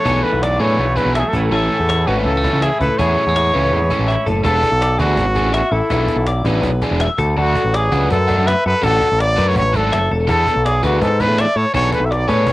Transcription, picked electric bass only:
0.05 0.22 B1 medium
0.33 0.57 B1 medium
0.60 0.76 A2 medium
0.78 0.95 B1 medium
1.05 1.22 B1 medium
1.33 1.50 A1 medium
1.51 1.68 A1 medium
1.80 2.04 E2 medium
2.08 2.24 G#1 medium
2.25 2.50 C#2 loud
2.53 2.69 C#2 medium
2.80 2.88 C#2 medium
2.99 3.15 E2 medium
3.27 3.51 E2 medium
3.55 3.71 C#2 medium
3.72 3.88 E2 loud
3.99 4.16 A1 medium
4.26 4.43 F#1 medium
4.45 4.61 E1 loud
4.72 4.96 B1 medium
4.99 5.16 D2 medium
5.17 5.45 G#1 loud
5.45 5.61 A1 medium
5.72 5.80 A1 loud
5.90 6.07 B1 medium
6.16 6.42 B1 medium
6.44 6.61 A1 medium
6.63 6.80 B1 loud
6.91 7.07 E1 medium
7.18 7.35 D2 medium
7.38 7.54 D2 loud
7.64 7.89 A1 medium
7.92 8.08 C#2 medium
8.11 8.35 F#2 loud
8.38 8.54 F#2 medium
8.66 8.73 F#2 medium
8.83 8.99 A1 medium
9.12 9.35 A1 medium
9.38 9.54 F#2 medium
9.56 9.72 A1 medium
9.74 9.90 G#1 medium
9.94 10.10 F#1 medium
10.11 10.27 E1 medium
10.29 10.45 E2 loud
10.56 10.80 B1 medium
10.83 10.99 D2 medium
11.02 11.29 G#2 loud
11.29 11.45 A2 medium
11.56 11.64 A2 medium
11.75 11.91 B1 loud
12.00 12.25 B1 medium
12.29 12.45 A2 medium
12.47 12.53 B1 loud

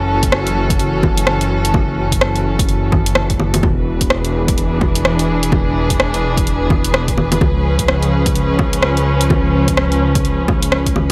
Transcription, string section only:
0.00 3.63 E3 medium
0.00 3.64 C#4 medium
0.00 5.17 F#4 medium
0.00 3.64 A4 medium
3.64 7.42 E3 medium
3.75 11.12 B4 medium
3.81 7.42 D4 medium
4.01 11.12 G#4 medium
7.42 11.12 F3 medium
7.52 11.12 C#4 medium

